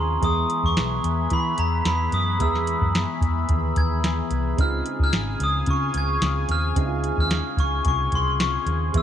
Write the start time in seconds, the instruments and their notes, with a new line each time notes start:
Already playing: picked electric bass D#2, clean electric guitar C#3 C4 F4 G#4, upright piano G#3 C4 D#4 F4, analog synth pad G#4 F5 G#5, glockenspiel C6
0.21 picked electric bass E2, clean electric guitar E3 B3 E4 G#4, upright piano G#3 B3 E4, analog synth pad B4 E5 B5, glockenspiel D#6, kick, closed hi-hat
0.26 upright piano G#4
0.50 closed hi-hat
0.64 picked electric bass E2, glockenspiel C#6, kick
0.76 picked electric bass B1, clean electric guitar E3 B3 E4 G#4, snare, closed hi-hat
1.04 picked electric bass E2, closed hi-hat
1.30 clean electric guitar E3 B3 E4 G#4, picked electric bass E3, glockenspiel B5, kick, closed hi-hat
1.58 picked electric bass E2, glockenspiel A#5, closed hi-hat
1.84 picked electric bass E2, clean electric guitar E3 B3 E4 G#4, glockenspiel B5, snare, closed hi-hat
2.12 picked electric bass F#2, glockenspiel D#6, closed hi-hat
2.38 picked electric bass E2, clean electric guitar E3 B3 E4 G#4, upright piano G#3 B3 E4, glockenspiel E6, kick, closed hi-hat
2.43 upright piano G#4
2.55 snare
2.67 closed hi-hat
2.82 picked electric bass F#2, kick
2.94 clean electric guitar E3 B3 E4 G#4, snare, closed hi-hat
3.21 picked electric bass E2, kick, closed hi-hat
3.48 picked electric bass D#2, clean electric guitar E3 B3 E4 G#4, kick, closed hi-hat
3.76 picked electric bass D#2, glockenspiel G#6, kick, closed hi-hat
4.03 clean electric guitar E3 B3 E4 G#4, snare, closed hi-hat
4.31 picked electric bass C2, closed hi-hat
4.56 picked electric bass C#2, clean electric guitar C#3 C4, upright piano G#3 C4 D#4, analog synth pad G#4 F5 G#5, kick, closed hi-hat
4.60 clean electric guitar F4 G#4, upright piano F4, glockenspiel F6
4.86 closed hi-hat
5.00 picked electric bass C#2, glockenspiel F6, kick
5.13 picked electric bass G#1, snare, closed hi-hat
5.40 picked electric bass C#2, glockenspiel D#6, closed hi-hat
5.66 clean electric guitar C#3 C4 F4 G#4, picked electric bass C#3, kick, closed hi-hat
5.70 glockenspiel C#6
5.94 picked electric bass C#2, glockenspiel G#6, closed hi-hat
6.22 picked electric bass C#2, clean electric guitar C#3 C4 F4 G#4, snare, closed hi-hat
6.49 picked electric bass D#2, glockenspiel F6, closed hi-hat
6.75 picked electric bass C#2, clean electric guitar C#3 C4 F4 G#4, upright piano G#3 C4 D#4, kick, closed hi-hat
6.80 upright piano E4
6.86 upright piano F4
7.04 closed hi-hat
7.18 picked electric bass D#2, glockenspiel F6, kick
7.30 clean electric guitar C#3 C4 F4 G#4, snare, closed hi-hat
7.57 picked electric bass C#2, glockenspiel C#6, kick, closed hi-hat
7.84 picked electric bass C2, clean electric guitar C#3 C4 F4 G#4, glockenspiel C#6, kick, closed hi-hat
8.12 picked electric bass C2, glockenspiel C6, kick, closed hi-hat
8.39 clean electric guitar C#3 C4 F4 G#4, glockenspiel C#6, snare, closed hi-hat
8.66 picked electric bass D#2, closed hi-hat
8.92 picked electric bass E2, clean electric guitar E3 B3 E4 G#4, upright piano G#3 B3 E4, analog synth pad B4 E5 G#5, kick, closed hi-hat
8.97 upright piano G#4, glockenspiel E6